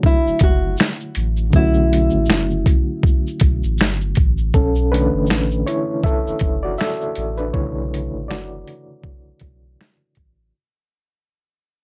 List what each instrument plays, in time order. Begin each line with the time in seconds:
Already playing: reed electric piano D3 F#3 A3 E4 F#4 C#5
0.03 nylon-string guitar E4, kick, shaker
0.26 sub bass F#1, shaker
0.39 sub bass F#1, kick, closed hi-hat, shaker
0.43 nylon-string guitar F#4
0.77 finger snap, snare, tambourine, shaker
1.00 shaker
1.15 sub bass A1, closed hi-hat, shaker
1.37 shaker
1.51 sub bass B1, reed electric piano D3 F#3 A3, kick, shaker
1.56 reed electric piano C#4 F#4, nylon-string guitar E4
1.74 shaker
1.93 closed hi-hat, shaker
2.10 sub bass A1, shaker
2.26 sub bass F#1, finger snap, shaker
2.30 snare, tambourine
2.50 shaker
2.66 kick, closed hi-hat, shaker
3.03 kick, shaker
3.27 shaker
3.40 sub bass B1, kick, closed hi-hat, shaker
3.63 sub bass A1, shaker
3.78 sub bass G1, finger snap, snare, tambourine, shaker
4.01 shaker
4.15 sub bass A1, kick, closed hi-hat, shaker
4.38 shaker
4.54 sub bass B1, reed electric piano C#4 A4, kick, shaker
4.75 shaker
4.92 reed electric piano D3 E3 A3 C#4 D4 B4, closed hi-hat, shaker
5.14 sub bass G1
5.26 sub bass A1, finger snap, shaker
5.31 snare
5.51 shaker
5.67 reed electric piano E4 C#5, closed hi-hat, shaker
6.04 reed electric piano A4 E5, kick, shaker
6.27 sub bass F#1, shaker
6.40 sub bass F#1, kick, closed hi-hat, shaker
6.63 reed electric piano F#4 D5
6.78 reed electric piano A4 E5, finger snap, snare, shaker
7.01 shaker
7.16 sub bass A1, closed hi-hat, shaker
7.38 reed electric piano D4 B4, shaker
7.54 sub bass B1, reed electric piano C#3 D3 E3 A3 E4 C#5, kick
7.94 closed hi-hat
8.14 sub bass A1
8.28 sub bass F#1, reed electric piano F#4 D5, finger snap, snare
8.68 closed hi-hat
9.04 kick
9.27 sub bass B1
9.39 sub bass B1, kick, closed hi-hat
9.81 finger snap, snare
10.15 sub bass A1, kick, closed hi-hat